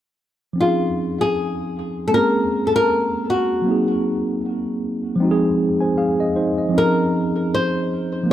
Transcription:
0.53 F3 C4
0.58 C#4 D#4 F4
0.62 G#4
1.21 G#4
2.07 G#3 A#3 A4
2.13 C4 C#4 A#4
2.18 G#4
2.67 A4
2.76 A#4
3.30 F#4
3.62 F#3 A#3
3.67 C4 D#4
3.71 G#4
5.16 F3 G#3
5.20 C4 D#4
5.25 F#4
5.31 G#4
5.81 C5 G#5
5.98 G#4 F5
6.20 D#5
6.36 D#4 C5
6.58 D#5
6.69 F3 C4
6.73 C#4 D#4
6.78 G#4 A#4
7.54 C5
8.23 F3 A#3
8.28 G#3 C#4

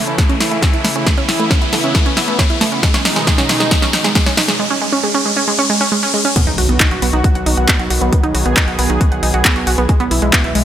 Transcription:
Already playing: C#3 E3 A3 E4, riser
0.07 C#4, closed hi-hat
0.18 A3, kick, snare, closed hi-hat
0.29 C#4, closed hi-hat
0.40 E4, snare, open hi-hat
0.51 A3, closed hi-hat
0.62 C#4, kick, snare, closed hi-hat
0.73 E4, closed hi-hat
0.84 A3, snare, open hi-hat
0.96 C#4, closed hi-hat
1.06 A3 B3, kick, snare, closed hi-hat
1.18 C#4, closed hi-hat
1.29 E4, snare, open hi-hat
1.40 A3, closed hi-hat
1.51 C#4, kick, snare, closed hi-hat
1.62 E4, closed hi-hat
1.73 A3, snare, open hi-hat
1.84 C#4, closed hi-hat
1.95 A3, kick, snare, closed hi-hat
2.06 C#4, closed hi-hat
2.17 E4, snare, open hi-hat
2.28 A3, closed hi-hat
2.39 C#4, kick, snare, closed hi-hat
2.50 E4, closed hi-hat
2.61 A3, snare, open hi-hat
2.72 C#4, closed hi-hat
2.83 B2 D#3 G#3 D#4, kick, snare, closed hi-hat
2.94 C#4, snare, closed hi-hat
3.05 D#4, snare, open hi-hat
3.16 G#3, snare, closed hi-hat
3.27 G#3, kick, snare, closed hi-hat
3.38 C#4, snare, closed hi-hat
3.49 D#4, snare, open hi-hat
3.60 G#3, snare, closed hi-hat
3.71 G#3, kick, snare, closed hi-hat
3.82 C#4, snare, closed hi-hat
3.93 D#4, snare, open hi-hat
4.04 G#3, snare, closed hi-hat
4.15 G#3, kick, snare, closed hi-hat
4.26 C#4, snare, closed hi-hat
4.37 D#4, snare, open hi-hat
4.48 G#3, snare, closed hi-hat
4.59 G#3
4.70 C#4
4.82 G#3
4.93 C#4
5.04 G#3
5.15 C#4
5.25 G#3
5.37 C#4
5.48 G#3
5.59 C#4
5.70 G#3
5.81 C#4
5.92 G#3
6.03 C#4
6.14 G#3
6.25 C#4
6.36 D#3 F#3 B3 F#4, kick, closed hi-hat, crash, impact
6.47 B1 D#4, closed hi-hat
6.58 B1 F#4, open hi-hat
6.69 B1 B3, closed hi-hat
6.80 D#4, kick, clap, closed hi-hat
6.91 B1 F#4, closed hi-hat
7.02 B1 B3, open hi-hat
7.13 B1 D#4, closed hi-hat
7.24 F#4, kick, closed hi-hat
7.35 B1 F#5, closed hi-hat
7.46 B1 D#4, open hi-hat
7.57 B1 F#4, closed hi-hat
7.68 B3, kick, clap, closed hi-hat
7.79 B1 F#4, closed hi-hat
7.90 B1 F#4, open hi-hat
8.01 B1 B3, closed hi-hat
8.12 B3 G#4, kick, closed hi-hat
8.23 B1 D#4, closed hi-hat
8.35 B1 F#4, open hi-hat
8.46 B1 B3, closed hi-hat
8.57 D#4, kick, clap, closed hi-hat
8.68 B1 F#4, closed hi-hat
8.79 B1 B3, open hi-hat
8.90 B1 D#4, closed hi-hat
9.01 F#4, kick, closed hi-hat
9.12 B1 F#5, closed hi-hat
9.23 B1 D#4, open hi-hat
9.34 B1 F#4, closed hi-hat
9.45 B3, kick, clap, closed hi-hat
9.56 B1 F#4, closed hi-hat
9.67 B1 F#4, open hi-hat
9.78 B1 B3, closed hi-hat
9.89 B2 E3 G#3 E4, kick, closed hi-hat
10.00 B1 B3, closed hi-hat
10.11 B1 E4, open hi-hat
10.22 B1 G#3, closed hi-hat
10.33 B3, kick, clap, closed hi-hat
10.44 B1 E4, closed hi-hat
10.55 B1 G#3, open hi-hat

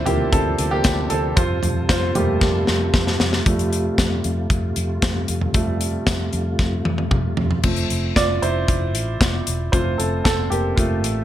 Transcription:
Already playing: C3 F3 D4 E4 F4 A4 C5 D5
0.06 D2 F3 A#3 C4 E4 G4, closed hi-hat, floor tom
0.32 D2 C4 A4, kick, closed hi-hat
0.58 D2, closed hi-hat
0.71 A#3 G4
0.84 D2, kick, snare, closed hi-hat
1.10 D2 C4 A4, closed hi-hat
1.36 F2 G3 F4 A4 C5, kick, closed hi-hat
1.63 F2, closed hi-hat, floor tom
1.89 F2 F4 C5, kick, snare, closed hi-hat
2.15 F2 G3 A3 A#3 F4 G4, closed hi-hat, floor tom
2.41 F2, kick, snare
2.67 F2, snare
2.94 F2, kick, snare
3.07 snare
3.20 F2, snare
3.33 snare
3.46 F2 C3 F3 G3 A3 F4, kick, closed hi-hat
3.59 closed hi-hat
3.73 closed hi-hat
3.98 F2, kick, snare, closed hi-hat
4.24 F2, closed hi-hat
4.50 F2, kick, closed hi-hat
4.76 F2, closed hi-hat
5.02 F2, kick, snare, closed hi-hat
5.28 F2, closed hi-hat
5.41 floor tom
5.54 F2 F3 G3 A3, kick, closed hi-hat
5.81 closed hi-hat
6.07 F2, kick, snare, closed hi-hat
6.33 F2, closed hi-hat
6.59 F2, kick, snare
6.85 F2, high tom
6.98 high tom
7.11 F2, kick, mid tom
7.37 F2, floor tom
7.51 floor tom
7.63 F1 F3 A3 C4, kick, crash
7.76 closed hi-hat
7.90 F1, closed hi-hat
8.16 F1 F4 D5, kick, snare, closed hi-hat
8.42 F1 E4 C5, closed hi-hat
8.68 F1, kick, closed hi-hat
8.95 A1, closed hi-hat
9.21 F1, kick, snare, closed hi-hat
9.47 E1, closed hi-hat
9.72 F1 F3 A3 C4 F4 C5, kick, closed hi-hat
9.98 F1 C4 A4, closed hi-hat
10.24 F1 C4 A4, kick, snare, closed hi-hat
10.50 F1 A#3 G4, closed hi-hat
10.76 F1 A3 F4, kick, closed hi-hat
11.04 A1, closed hi-hat

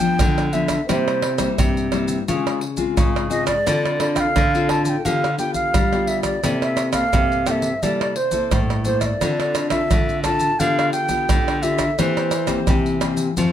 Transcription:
Already playing: G2 G5
0.00 F3 B3 D4
0.19 D3, pandeiro, tamborim, maracas, surdo
0.38 pandeiro, tamborim, maracas
0.53 F3 B3 D4 E5, pandeiro, maracas, surdo
0.68 pandeiro, tamborim, maracas, surdo
0.89 C3 G3 A#3 E4 C5, pandeiro, tamborim, maracas, surdo
1.08 pandeiro, tamborim, maracas
1.22 pandeiro, tamborim
1.38 G3 A#3 E4, pandeiro, tamborim, maracas, surdo
1.58 G2 C3, pandeiro, tamborim, maracas, surdo
1.77 pandeiro, maracas
1.92 G3 A#3 E4, pandeiro, tamborim, maracas, surdo
2.08 pandeiro, maracas
2.28 C#3 G#3 C4 F4, pandeiro, maracas, surdo
2.47 pandeiro, tamborim, maracas
2.61 pandeiro
2.77 G#3 C4 F4, pandeiro, maracas, surdo
2.97 G#2 C#3, pandeiro, tamborim, maracas, surdo
3.16 pandeiro, tamborim, maracas
3.30 G#3 C4 F4 D#5, pandeiro, maracas, surdo
3.47 D5, pandeiro, tamborim, maracas, surdo
3.66 D3 C4 F4 A4, pandeiro, tamborim, maracas, surdo
3.85 pandeiro, tamborim, maracas
4.00 C4 F4 A4, pandeiro, tamborim
4.16 G5, pandeiro, tamborim, maracas, surdo
4.20 F5
4.36 D3, pandeiro, tamborim, maracas, surdo
4.54 C4 F4 A4, pandeiro, maracas
4.69 A5, pandeiro, tamborim, surdo
4.85 A5, pandeiro, maracas
4.89 G5
5.05 D3 B3 F4 G4 F5, pandeiro, maracas, surdo
5.24 pandeiro, tamborim, maracas
5.38 B3 F4 G4 G5, pandeiro, maracas
5.54 F5, pandeiro, maracas, surdo
5.74 D3 G3, pandeiro, tamborim, maracas, surdo
5.93 B3 F4 G4, pandeiro, tamborim, maracas
6.07 E5, pandeiro
6.23 D5, pandeiro, tamborim, maracas, surdo
6.43 C3 A#3 E4 A4, pandeiro, tamborim, maracas, surdo
6.62 E5, pandeiro, tamborim, maracas
6.77 pandeiro, tamborim, maracas
6.93 A#3 A4 F5, pandeiro, tamborim, maracas, surdo
7.13 G2 C3, pandeiro, tamborim, maracas, surdo
7.32 pandeiro, maracas
7.46 A#3 E4 A4 G5, pandeiro, tamborim, maracas, surdo
7.51 E5
7.62 pandeiro, maracas
7.83 C3 G3 A#3 E4 A4 D5, pandeiro, maracas, surdo
8.01 pandeiro, tamborim, maracas
8.16 C5, pandeiro
8.31 A#3 E4 A4, pandeiro, maracas, surdo
8.51 G2 A2, pandeiro, tamborim, maracas, surdo
8.70 pandeiro, tamborim, maracas
8.85 A#3 E4 A4 C5, pandeiro, maracas, surdo
9.01 E5, pandeiro, tamborim, maracas, surdo
9.05 D5
9.21 D3 C4 F4 A4, pandeiro, tamborim, maracas, surdo
9.40 pandeiro, tamborim, maracas
9.55 pandeiro, tamborim, maracas
9.70 C4 F4 A4 E5, pandeiro, tamborim, maracas, surdo
9.91 A2 D3, pandeiro, tamborim, maracas, surdo
10.09 pandeiro, maracas
10.24 C4 F4 A4 A5, pandeiro, tamborim, maracas, surdo
10.40 pandeiro, maracas
10.60 D3 B3 F4 G4 F5, pandeiro, maracas, surdo
10.79 pandeiro, tamborim, maracas
10.92 G5, pandeiro, maracas
11.09 B3 F4 G4, pandeiro, maracas, surdo
11.29 D3, pandeiro, tamborim, maracas, surdo
11.48 pandeiro, tamborim, maracas
11.62 B3 F4 G4 E5, pandeiro, maracas
11.79 pandeiro, tamborim, maracas, surdo
11.98 E3 A#3 C4 G4 C5, pandeiro, tamborim, maracas, surdo
12.17 pandeiro, tamborim, maracas
12.31 pandeiro, tamborim, maracas
12.47 A#3 C4 G4, pandeiro, tamborim, maracas, surdo
12.67 C3 E3, pandeiro, tamborim, maracas, surdo
12.86 pandeiro, maracas
13.01 A#3 C4 G4, pandeiro, tamborim, maracas, surdo
13.17 pandeiro, maracas
13.37 F2 F3 A3 C4, pandeiro, maracas, surdo

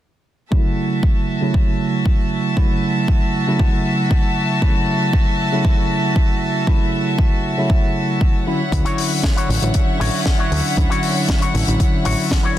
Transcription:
0.51 C#3 F#3 A3 E4 F#4 E5 A5, kick
1.03 kick
1.41 C#3 F#3 A3 E4
1.54 kick
2.06 kick
2.56 C#3 F#3 A3 E4, kick
3.08 kick
3.46 C#3 F#3 A3 E4
3.59 kick
4.11 kick
4.61 C#3 F#3 A3 E4, kick
5.13 kick
5.52 C#3 F#3 A3 E4
5.65 kick
6.16 kick
6.67 C#3 F#3 A3 E4, kick
7.19 kick
7.57 C#3 F#3 A3 E4
7.70 kick
8.21 kick
8.46 D3 F#3 C#4 E4 C#5 E5 F#5
8.72 D2 D3 F#3 C#4 E4, kick, closed hi-hat
8.84 E4 F#4 C#5, closed hi-hat
8.98 open hi-hat
9.24 kick, snare, closed hi-hat
9.36 E4 F#4 C#5, closed hi-hat
9.49 A1, open hi-hat
9.62 A1 D3 F#3 C#4 E4, muted clean electric guitar stroke, closed hi-hat
9.74 kick, closed hi-hat
9.99 A1 E4 F#4 C#5, open hi-hat
10.26 kick, snare
10.38 E4 F#4 C#5
10.52 D2, open hi-hat
10.77 D2 D3 F#3 C#4 E4, kick, closed hi-hat
10.89 E4 F#4 C#5, closed hi-hat
11.03 open hi-hat
11.29 kick, snare, closed hi-hat
11.41 E4 F#4 C#5, closed hi-hat
11.54 A1, open hi-hat
11.67 A1 D3 F#3 C#4 E4, muted clean electric guitar stroke, closed hi-hat
11.80 kick, closed hi-hat
12.04 A1 E4 F#4 C#5, open hi-hat
12.31 kick, snare, closed hi-hat
12.43 E4 F#4 C#5

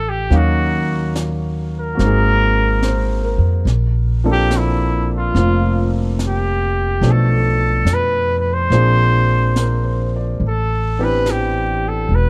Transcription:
Already playing: A1 F3 A3 C4 D4 A4 E5
0.09 G4
0.30 D#2 F#3 A#3 C#4 D#4 F5, brush sweep, snare
0.37 F#4
1.16 snare, hi-hat pedal
1.80 A#4
1.95 A#3 F#4
1.99 G#1 C4, brush sweep, snare
2.03 D#4 G#4
2.82 C5, snare, hi-hat pedal
3.24 A#4
3.38 F2
3.65 A#1, brush sweep, snare
4.24 F3 A#3 C4 D4 A4
4.32 G4
4.51 snare, hi-hat pedal
4.58 E4
5.18 F4
5.35 F1 A#3 C4 F4, brush sweep, snare
6.19 snare, hi-hat pedal
6.27 G4
7.01 B1 B2 F3 A3 D4 A4, brush sweep, snare
7.11 A4
7.85 F2, snare, hi-hat pedal
7.94 B4
8.39 B4
8.54 C5
8.70 A#1 F3 A#3 C4 D4 G#4, brush sweep, snare
9.56 A#4, snare, hi-hat pedal
9.84 C5
10.16 D5
10.40 A1, brush sweep
10.48 A4
10.99 E3 B3 C4 D4 G4
11.04 B4
11.26 snare, hi-hat pedal
11.31 G4
11.89 A4
12.09 E1, brush sweep
12.15 B4

